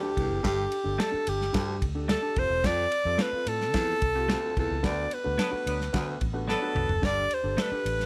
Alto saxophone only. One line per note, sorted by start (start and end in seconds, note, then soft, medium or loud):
0.00 0.45 G4 medium
0.46 1.02 G4 loud
1.01 1.30 A4 medium
1.29 1.83 G4 medium
2.11 2.40 A4 loud
2.39 2.67 C5 loud
2.66 3.23 D5 loud
3.22 3.50 B4 loud
3.48 4.57 A4 loud
4.60 4.87 A4 loud
4.85 5.15 D5 loud
5.14 6.23 B4 medium
6.51 7.07 A4 loud
7.05 7.35 D5 loud
7.34 7.64 C5 loud
7.62 8.06 B4 loud